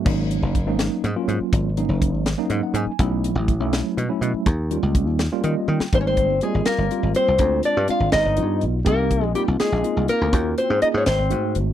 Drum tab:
CC |x-----------|------------|------------|------------|
HH |--x-x-x-x-x-|x-x-x-x-x-x-|x-x-x-x-x-x-|x-x-x-x-x---|
SD |------o-----|------o-----|------o-----|------o----o|
T1 |------------|------------|------------|----------o-|
BD |o---o-------|o---o-------|o---o-------|o---o-------|

CC |------------|------------|------------|------------|
HH |x-x-x-x-x-x-|x-x-x-x-x-x-|x-x-x-x-x-x-|x-x-x-x-x-x-|
SD |------o-----|------o-----|------o-----|------o-----|
T1 |------------|------------|------------|------------|
BD |o-o---------|o-----------|o-o---------|o-----------|